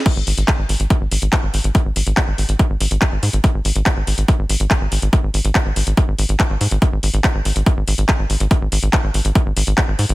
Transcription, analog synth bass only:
\new Staff \with { instrumentName = "Analog synth bass" } { \clef bass \time 4/4 \tempo 4 = 142 r16 gis,,16 gis,,16 gis,,16 r16 gis,,16 gis,,16 gis,,16 r16 gis,,16 gis,,16 gis,,16 r16 gis,,16 gis,,16 gis,,16 | r16 gis,,16 gis,,16 gis,,16 r16 gis,,16 gis,,16 gis,,16 r16 gis,,16 gis,,16 gis,,16 r16 gis,,16 gis,16 gis,,16 | r16 gis,,16 gis,,16 gis,,16 r16 gis,,16 gis,,16 gis,,16 r16 gis,,16 gis,,16 gis,,16 r16 gis,,16 gis,,16 gis,,16 | r16 gis,,16 gis,,16 gis,,16 r16 gis,,16 gis,,16 gis,,16 r16 gis,,16 gis,,16 gis,,16 r16 gis,,16 gis,16 gis,,16 |
r16 gis,,16 gis,,16 gis,,16 r16 gis,,16 gis,,16 gis,,16 r16 gis,,16 gis,,16 gis,,16 r16 gis,,16 gis,,16 gis,,16 | r16 gis,,16 gis,,16 gis,,16 r16 gis,,16 gis,,16 gis,,16 r16 gis,,16 gis,,16 gis,,16 r16 gis,,16 gis,16 gis,,16 | }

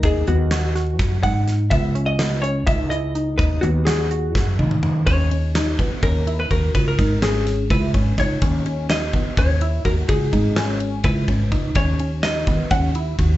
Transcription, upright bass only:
\new Staff \with { instrumentName = "Upright bass" } { \clef bass \time 7/8 \key dis \phrygian \tempo 4 = 125 dis,8 dis,4. fis,8 gis,4 | cis,2 cis,4. | dis,8 dis,4. fis,8 dis4 | dis,4. dis16 r16 dis,4 dis,8 |
cis,8 gis,,4. cis,8 gis,,8 cis,8 | dis,4. dis16 r16 dis,4 dis,8 | cis,8 gis,,4. cis,8 gis,,8 cis,8 | dis,4. dis16 r16 dis,4 dis,8 | }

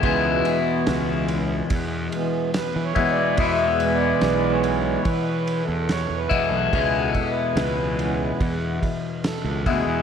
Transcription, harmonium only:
<<
  \new Staff \with { instrumentName = "Harmonium" } { \time 4/4 \key e \major \tempo 4 = 72 \tuplet 3/2 { gis'8 fis'4~ } fis'8 r4. \tuplet 3/2 { b'8 cis''8 d''8 } | \tuplet 3/2 { e''4 d''8~ d''8 cis''4 b'4 a'8 cis''8 b'8 a'8 } | \tuplet 3/2 { gis'8 a'8 b'8~ } b'4 r4 a'8 gis'8 | }
  \new Staff \with { instrumentName = "Harmonium" } { \clef bass \time 4/4 \key e \major <e gis b>8 r2 <e gis b>8 r4 | r8 <e gis b>4. r2 | r4. <e gis b>8 r2 | }
>>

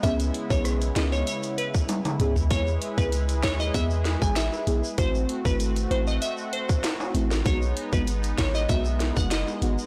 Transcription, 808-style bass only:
\new Staff \with { instrumentName = "808-style bass" } { \clef bass \time 4/4 \key e \major \tempo 4 = 97 cis,8 r16 b,,8. cis,8 r4. cis,8 | e,8 r16 cis,8. dis,8 e,8. a,,8 r16 b,,16 r16 | a,,8 r16 gis,,8. a,,8 r4. a,,8 | b,,8 r16 gis,,8. a,,8 b,,8. fis,,8 r16 gis,,16 r16 | }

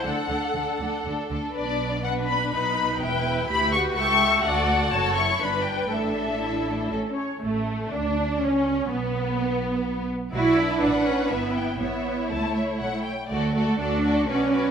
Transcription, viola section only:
\new Staff \with { instrumentName = "Viola section" } { \time 3/4 \key d \mixolydian \tempo 4 = 123 a'2~ a'8 r8 | \key d \major r4 b'2 | b'4 g'4 e''4 | d''4 cis''4 b'4 |
a'4 e'4 a'8 cis''8 | a4 d'4 cis'4 | b2~ b8 r8 | e'4 d'8 cis'8 b4 |
b4 a4. r8 | a4 d'4 cis'4 | }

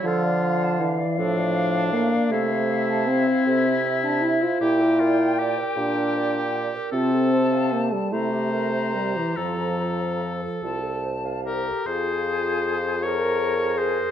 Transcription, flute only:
\new Staff \with { instrumentName = "Flute" } { \time 6/8 \key f \major \tempo 4. = 52 f''2.~ | f''4. e''4. | g''2~ g''8 r8 | a''4. bes''4.~ |
bes''4. a''4 g'8 | \key f \minor aes'4. bes'4 aes'8 | }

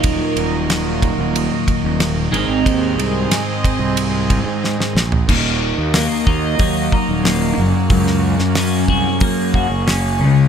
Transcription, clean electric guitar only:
\new Staff \with { instrumentName = "Clean electric guitar" } { \time 4/4 \key ees \dorian \tempo 4 = 92 <ees, bes, ees ges bes ees'>2.~ <ees, bes, ees ges bes ees'>8 <aes, ees aes c' ees'>8~ | <aes, ees aes c' ees'>2.~ <aes, ees aes c' ees'>8 r8 | ees,4 bes8 ees'8 ges8 ees'8 bes8 ges,8 | ges,4 des'8 ges'8 bes8 ges'8 des'8 des8 | }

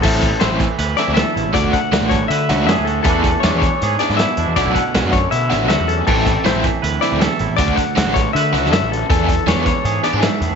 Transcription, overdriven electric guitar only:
\new Staff \with { instrumentName = "Overdriven electric guitar" } { \time 4/4 \key d \lydian \tempo 4 = 159 <e a c' e'>8 r8 <e a c' e'>8 r4 <e a c' e'>8 r4 | <d a d' fis'>8 r8 <d a d' fis'>8 r4 <d a d' fis'>8 r4 | <e b d' gis'>8 r8 <e b d' gis'>8 r4 <e b d' gis'>8 r4 | <fis b d' fis'>8 r8 <fis b d' fis'>8 r4 <fis b d' fis'>8 r4 |
<e a c' e'>8 r8 <e a c' e'>8 r4 <e a c' e'>8 r4 | <d a d' fis'>8 r8 <d a d' fis'>8 r4 <d a d' fis'>8 r4 | <e b d' gis'>8 r8 <e b d' gis'>8 r4 <e b d' gis'>8 r4 | }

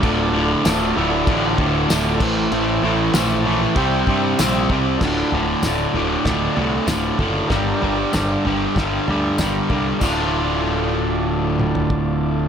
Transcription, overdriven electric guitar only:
\new Staff \with { instrumentName = "Overdriven electric guitar" } { \clef bass \time 4/4 \key d \minor \tempo 4 = 96 <d, a, d>8 <d, a, d>8 <d, a, d>8 <d, a, d>8 <d, a, d>8 <d, a, d>8 <d, a, d>8 <a, e a>8 | <a, e a>8 <a, e a>8 <a, e a>8 <a, e a>8 <c g c'>8 <c g c'>8 <c g c'>8 <c g c'>8 | <d, a, d>8 <d, a, d>8 <d, a, d>8 <d, a, d>8 <d, a, d>8 <d, a, d>8 <d, a, d>8 <d, a, d>8 | <g, d g>8 <g, d g>8 <g, d g>8 <g, d g>8 <g, d g>8 <g, d g>8 <g, d g>8 <g, d g>8 |
<d, a, d a f'>1 | }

